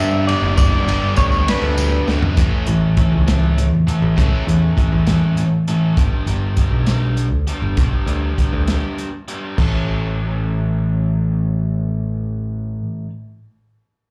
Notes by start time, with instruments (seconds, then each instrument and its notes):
Already playing: picked electric bass G2, overdriven electric guitar G2 D3 G3 B3 D4 G4, clean electric guitar E5
0.00 overdriven electric guitar G3
0.27 overdriven electric guitar G3 B3 D4 G4, clean electric guitar D5, ride
0.42 picked electric bass F#1
0.57 overdriven electric guitar G2 D3 G3 B3 D4 G4, clean electric guitar D5, kick, ride, tambourine
0.87 picked electric bass G1, overdriven electric guitar B3 D4 G4, ride, tambourine
0.91 overdriven electric guitar G3
1.16 picked electric bass D2, overdriven electric guitar G3 B3 D4 G4, clean electric guitar C#5, kick, ride, tambourine
1.32 tambourine
1.47 overdriven electric guitar G2 D3 G3 B3 D4 G4, clean electric guitar B4, snare, ride
1.62 picked electric bass D2, tambourine
1.78 overdriven electric guitar G3, ride, tambourine
2.07 picked electric bass D2, overdriven electric guitar G3 B3 D4 G4, snare, tambourine
2.22 floor tom
2.37 picked electric bass A1, overdriven electric guitar A2 E3 A3 C#4 A4, kick, closed hi-hat
2.67 picked electric bass A1, overdriven electric guitar A2 E3 A3 C#4 A4, closed hi-hat
2.97 overdriven electric guitar A2 E3 A3 C#4 A4, kick, closed hi-hat
3.12 picked electric bass C#2
3.26 overdriven electric guitar A2 E3 A3 C#4 A4, snare, closed hi-hat
3.57 overdriven electric guitar A2 E3, closed hi-hat
3.72 picked electric bass E2
3.87 overdriven electric guitar A2 E3 A3 C#4 A4, closed hi-hat
4.02 picked electric bass A1
4.16 picked electric bass C#2, overdriven electric guitar A2 E3 A3 C#4 A4, kick, closed hi-hat
4.46 picked electric bass E2, overdriven electric guitar A2 E3 A3 C#4 A4, closed hi-hat
4.77 overdriven electric guitar A2 E3 A3 C#4 A4, kick, closed hi-hat
4.92 picked electric bass E2
5.06 overdriven electric guitar A2 E3 A3 C#4 A4, snare, closed hi-hat
5.37 overdriven electric guitar A2 E3, closed hi-hat
5.68 overdriven electric guitar A2 E3 A3 C#4 A4, closed hi-hat
5.97 picked electric bass G1, overdriven electric guitar G3 B3 D4 G4, kick, closed hi-hat
6.26 picked electric bass G1, overdriven electric guitar G3 B3 D4 G4, closed hi-hat
6.57 overdriven electric guitar G3 B3 D4 G4, kick, closed hi-hat
6.71 picked electric bass B1
6.86 overdriven electric guitar G3 B3 D4 G4, snare, closed hi-hat
7.17 closed hi-hat
7.32 picked electric bass D2
7.47 overdriven electric guitar G3 B3 D4 G4, closed hi-hat
7.62 picked electric bass G1
7.77 picked electric bass B1, overdriven electric guitar G3 B3 D4 G4, kick, closed hi-hat
8.06 picked electric bass D2, overdriven electric guitar G3 B3 D4 G4, closed hi-hat
8.38 overdriven electric guitar G3 B3 D4 G4, kick, closed hi-hat
8.53 picked electric bass D2
8.68 overdriven electric guitar G3 B3 D4 G4, snare, closed hi-hat
8.98 closed hi-hat
9.28 overdriven electric guitar G3 B3 D4 G4, closed hi-hat
9.56 picked electric bass A1, overdriven electric guitar A2 E3 A3 C#4, kick, crash
9.60 overdriven electric guitar A4